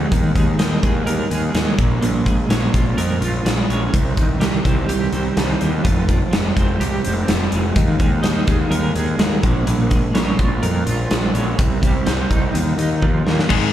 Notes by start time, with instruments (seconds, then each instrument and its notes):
Already playing: clean electric guitar F3 G#3 C4 G4
0.12 picked electric bass D#2, clean electric guitar D#3, kick, closed hi-hat
0.35 picked electric bass D#2, clean electric guitar G#3, kick, closed hi-hat
0.58 picked electric bass D#2, clean electric guitar D#4, snare, closed hi-hat
0.83 picked electric bass D#2, clean electric guitar G#4, kick, closed hi-hat
1.06 picked electric bass D#2, clean electric guitar A#4, closed hi-hat
1.30 picked electric bass D#2, clean electric guitar G#4, closed hi-hat
1.54 picked electric bass D#2, clean electric guitar G#3, snare, closed hi-hat
1.78 picked electric bass A#1, clean electric guitar A#2, kick, closed hi-hat
2.01 picked electric bass A#1, clean electric guitar A#2, closed hi-hat
2.26 clean electric guitar G#3, kick, closed hi-hat
2.49 picked electric bass A#1, clean electric guitar C#4, snare, closed hi-hat
2.74 picked electric bass A#1, clean electric guitar F4, kick, closed hi-hat
2.98 picked electric bass F2, clean electric guitar A#4, closed hi-hat
3.21 picked electric bass A#1, clean electric guitar F4, closed hi-hat
3.45 picked electric bass A#1, clean electric guitar G#3, snare, closed hi-hat
3.69 picked electric bass A#1, clean electric guitar C#4, closed hi-hat
3.94 picked electric bass C2, clean electric guitar C3, kick, closed hi-hat
4.17 picked electric bass C2, clean electric guitar D#3, kick, closed hi-hat
4.40 picked electric bass C2, clean electric guitar G3, snare, closed hi-hat
4.64 picked electric bass C2, clean electric guitar C4, kick, closed hi-hat
4.89 picked electric bass C2, clean electric guitar G4, closed hi-hat
5.12 picked electric bass C2, clean electric guitar C4, closed hi-hat
5.37 picked electric bass C2, clean electric guitar D#3, snare, closed hi-hat
5.61 picked electric bass D#2, clean electric guitar G3, closed hi-hat
5.84 picked electric bass F1, clean electric guitar F3, kick, closed hi-hat
6.08 clean electric guitar F3, kick, closed hi-hat
6.33 picked electric bass F1, clean electric guitar G#3, snare, closed hi-hat
6.56 picked electric bass F1, clean electric guitar C4, kick, closed hi-hat
6.80 picked electric bass C2, clean electric guitar G4, closed hi-hat
7.04 picked electric bass F1, clean electric guitar C4, closed hi-hat
7.28 picked electric bass F1, clean electric guitar F3, snare, closed hi-hat
7.51 picked electric bass F1, clean electric guitar G#3, closed hi-hat
7.76 picked electric bass D#2, clean electric guitar D#3, kick, closed hi-hat
7.99 picked electric bass D#2, clean electric guitar G#3, kick, closed hi-hat
8.23 picked electric bass D#2, clean electric guitar D#4, snare, closed hi-hat
8.47 picked electric bass D#2, clean electric guitar G#4, kick, closed hi-hat
8.70 picked electric bass D#2, clean electric guitar A#4, closed hi-hat
8.95 picked electric bass D#2, clean electric guitar G#4, closed hi-hat
9.18 picked electric bass D#2, clean electric guitar G#3, snare, closed hi-hat
9.43 picked electric bass A#1, clean electric guitar A#2, kick, closed hi-hat
9.67 picked electric bass A#1, clean electric guitar A#2, closed hi-hat
9.90 clean electric guitar G#3, kick, closed hi-hat
10.14 picked electric bass A#1, clean electric guitar C#4, snare, closed hi-hat
10.38 picked electric bass A#1, clean electric guitar F4, kick, closed hi-hat
10.63 picked electric bass F2, clean electric guitar A#4, closed hi-hat
10.86 picked electric bass A#1, clean electric guitar F4, closed hi-hat
11.11 picked electric bass A#1, clean electric guitar G#3, snare, closed hi-hat
11.34 picked electric bass A#1, clean electric guitar C#4, closed hi-hat
11.59 picked electric bass C2, clean electric guitar C3, kick, closed hi-hat
11.82 picked electric bass C2, clean electric guitar G3, kick, closed hi-hat
12.06 picked electric bass C2, clean electric guitar C4, snare, closed hi-hat
12.30 picked electric bass C2, clean electric guitar D#4, kick, closed hi-hat
12.54 picked electric bass D#2, clean electric guitar D#3, closed hi-hat
12.78 picked electric bass D#2, clean electric guitar D#4, closed hi-hat
13.02 picked electric bass D#2, clean electric guitar F3, kick
13.25 picked electric bass D#2, clean electric guitar A#3, snare
13.39 snare
13.49 picked electric bass G#1, distorted electric guitar G#2 D#3 G#3, clean electric guitar G#3, kick, crash